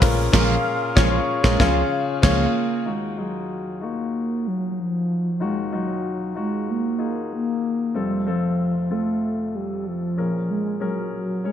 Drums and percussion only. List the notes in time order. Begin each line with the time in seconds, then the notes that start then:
0.02 kick, open hi-hat, ride, tambourine
0.18 tambourine
0.33 kick, snare, crash
0.97 kick, snare
1.44 kick, snare
1.60 kick, snare
2.23 kick, snare, crash